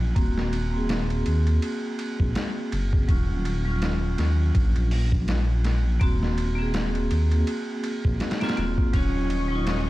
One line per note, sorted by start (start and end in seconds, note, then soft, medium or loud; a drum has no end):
0.00 0.13 A#1 medium
0.00 0.11 F#3 medium
0.00 0.13 C#4 medium
0.00 0.15 F4 medium
0.15 1.23 D#1 medium
0.15 0.68 A#3 medium
0.15 0.69 C4 medium
0.15 0.70 F#4 medium
0.15 kick loud
0.15 ride medium
0.38 snare soft
0.53 ride medium
0.70 3.03 A#3 medium
0.70 3.05 C4 medium
0.77 3.07 G#4 medium
0.89 snare loud
0.89 ride medium
1.10 ride soft
1.26 1.59 D#2 medium
1.26 ride medium
1.47 ride soft
1.62 ride medium
1.99 ride medium
2.20 2.34 A#1 medium
2.20 kick medium
2.35 snare loud
2.35 ride medium
2.72 3.05 F#1 medium
2.72 ride medium
2.93 kick medium
3.08 4.16 D#1 medium
3.08 3.61 F#3 medium
3.08 3.62 C#4 medium
3.08 3.62 F4 medium
3.08 kick loud
3.08 ride medium
3.45 ride medium
3.65 5.97 F#3 medium
3.65 5.99 C#4 medium
3.71 6.00 F4 medium
3.82 snare loud
3.82 ride medium
4.18 4.52 D#2 medium
4.18 snare soft
4.18 ride medium
4.55 5.98 A#1 loud
4.55 kick loud
4.55 ride medium
4.76 ride soft
4.91 open hi-hat medium
5.12 kick medium
5.28 snare loud
5.28 ride medium
5.64 snare medium
5.64 ride medium
6.00 7.08 D#1 medium
6.00 6.53 A#3 medium
6.00 6.54 C4 medium
6.00 6.55 F#4 medium
6.00 kick loud
6.00 ride medium
6.23 snare soft
6.38 ride medium
6.55 8.36 A#3 medium
6.55 8.37 C4 medium
6.62 8.39 G#4 medium
6.74 snare loud
6.74 ride medium
6.95 ride soft
7.11 7.44 D#2 medium
7.11 ride medium
7.31 ride soft
7.47 ride medium
7.84 ride medium
8.05 8.19 A#1 loud
8.05 kick medium
8.20 snare medium
8.20 ride medium
8.31 snare medium
8.31 ride medium
8.40 8.53 A#3 medium
8.40 8.54 C4 medium
8.40 8.55 F4 loud
8.40 snare medium
8.40 ride medium
8.49 snare medium
8.49 ride medium
8.57 8.76 D#1 loud
8.57 8.90 A#3 medium
8.57 8.91 C4 medium
8.57 8.92 F4 medium
8.57 ride medium
8.78 kick medium
8.93 9.90 D#1 medium
8.93 9.46 F#3 medium
8.93 9.90 F#3 medium
8.93 9.61 C#4 medium
8.93 9.47 C#4 medium
8.93 9.48 F4 medium
8.93 9.90 D#5 medium
8.93 9.90 C#6 medium
8.93 kick loud
8.93 ride medium
9.30 ride medium
9.48 9.90 F#3 medium
9.48 9.90 D#4 medium
9.55 9.90 F4 medium
9.67 9.90 C#4 medium
9.67 snare loud
9.67 ride medium